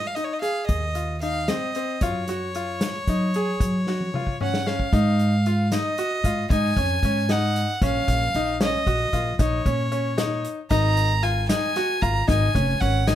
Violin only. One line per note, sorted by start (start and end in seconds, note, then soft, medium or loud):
0.07 0.16 F5 medium
0.15 0.26 D#5 medium
0.25 0.35 C#5 medium
0.33 0.41 D#5 medium
0.41 0.66 F5 medium
0.67 1.17 D#5 medium
1.22 1.50 F5 medium
1.49 2.03 D#5 medium
2.02 4.39 C#5 medium
4.43 4.69 F#5 medium
4.67 5.72 F5 medium
5.74 6.48 D#5 medium
6.51 7.34 G#5 medium
7.32 7.83 F#5 medium
7.85 8.58 F5 loud
8.63 9.37 D#5 medium
9.42 10.42 C#5 medium
10.70 11.25 A#5 loud
11.23 11.48 G#5 medium
11.49 12.03 G#5 loud
12.02 12.29 A#5 loud
12.29 12.83 G#5 medium
12.81 13.09 F#5 loud
13.08 13.15 G#5 medium